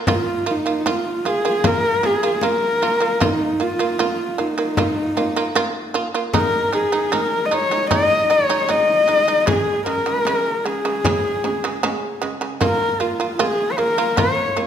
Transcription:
0.07 shamisen A#3 F4, frame drum
0.11 horsehead fiddle F4
0.46 shamisen A#3 F4, frame drum
0.50 horsehead fiddle D#4
0.66 shamisen A#3 F4
0.86 shamisen A#3 F4, frame drum
0.90 horsehead fiddle F4
1.25 shamisen A#3 F4, horsehead fiddle G#4, frame drum
1.45 shamisen A#3 F4
1.64 shamisen A#3 F4, horsehead fiddle A#4, frame drum
2.03 shamisen A#3 F4, horsehead fiddle G#4, frame drum
2.23 shamisen A#3 F4
2.41 shamisen A#3 F4, horsehead fiddle A#4, frame drum
2.82 shamisen A#3 F4, frame drum
3.00 shamisen A#3 F4
3.20 shamisen A#3 F4, horsehead fiddle D#4, frame drum
3.60 shamisen A#3 F4, horsehead fiddle F4, frame drum
3.79 shamisen A#3 F4
3.99 shamisen A#3 F4, frame drum
4.38 shamisen A#3 F4, horsehead fiddle D#4, frame drum
4.58 shamisen A#3 F4
4.77 shamisen A#3 F4, frame drum
5.17 shamisen A#3 F4, frame drum
5.36 shamisen A#3 F4
5.55 shamisen A#3 F4, frame drum
5.94 shamisen A#3 F4, frame drum
6.14 shamisen A#3 F4
6.34 shamisen G#3 D#4, horsehead fiddle A#4, frame drum
6.73 shamisen G#3 D#4, horsehead fiddle G#4, frame drum
6.92 shamisen G#3 D#4
7.12 shamisen G#3 D#4, horsehead fiddle A#4, frame drum
7.46 horsehead fiddle D#5
7.51 shamisen G#3 D#4, horsehead fiddle C#5, frame drum
7.71 shamisen G#3 D#4
7.91 shamisen G#3 D#4, horsehead fiddle D#5, frame drum
8.30 shamisen G#3 D#4, horsehead fiddle C#5
8.49 shamisen G#3 D#4
8.69 shamisen G#3 D#4, horsehead fiddle D#5, frame drum
9.08 shamisen G#3 D#4, frame drum
9.28 shamisen G#3 D#4
9.46 shamisen C#3 G#3, horsehead fiddle G#4, frame drum
9.86 shamisen C#3 G#3, horsehead fiddle A#4, frame drum
10.06 shamisen C#3 G#3
10.25 shamisen C#3 G#3, frame drum
10.64 shamisen C#3 G#3, horsehead fiddle G#4
10.85 shamisen C#3 G#3
11.05 shamisen C#3 G#3, frame drum
11.44 shamisen C#3 G#3, frame drum
11.64 shamisen C#3 G#3
11.83 shamisen C#3 G#3, frame drum
12.22 shamisen C#3 G#3, frame drum
12.41 shamisen C#3 G#3
12.61 shamisen A#3 F4, horsehead fiddle A#4, frame drum
13.00 shamisen A#3 F4, horsehead fiddle F4, frame drum
13.20 shamisen A#3 F4
13.39 shamisen A#3 F4, horsehead fiddle G#4, frame drum
13.72 horsehead fiddle C#5
13.78 shamisen A#3 F4, horsehead fiddle A#4, frame drum
13.98 shamisen A#3 F4
14.17 shamisen A#3 F4, horsehead fiddle C#5, frame drum
14.57 shamisen A#3 F4, frame drum

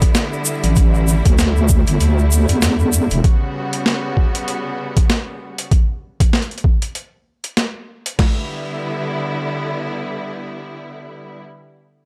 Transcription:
Already playing: string section D3 G3 B3 E4
0.01 kick, closed hi-hat, shaker
0.15 snare, closed hi-hat, shaker
0.33 shaker
0.45 shaker
0.64 wobble bass A1, closed hi-hat, shaker
0.76 string section A3, kick, closed hi-hat, shaker
0.95 shaker
1.08 shaker
1.25 wobble bass D2, kick, closed hi-hat, shaker
1.38 snare, closed hi-hat, shaker
1.56 shaker
1.69 kick, shaker
1.87 wobble bass G1, closed hi-hat, shaker
2.00 wobble bass D2, closed hi-hat, shaker
2.19 shaker
2.32 shaker
2.49 wobble bass E2, closed hi-hat, shaker
2.62 snare, closed hi-hat, shaker
2.80 shaker
2.93 shaker
3.10 wobble bass E1, closed hi-hat, shaker
3.24 string section C#3 G3 B3 F#4, kick, closed hi-hat
3.73 closed hi-hat
3.86 snare
4.17 kick
4.35 closed hi-hat
4.48 closed hi-hat
4.97 kick, closed hi-hat
5.10 snare, closed hi-hat
5.58 closed hi-hat
5.71 kick, closed hi-hat
6.20 kick, closed hi-hat
6.33 snare, closed hi-hat
6.42 closed hi-hat
6.51 closed hi-hat
6.58 closed hi-hat
6.64 kick
6.82 closed hi-hat
6.95 closed hi-hat
7.44 closed hi-hat
7.57 snare, closed hi-hat
8.06 closed hi-hat
8.19 string section D3 G3 B3 E4, kick, snare, crash

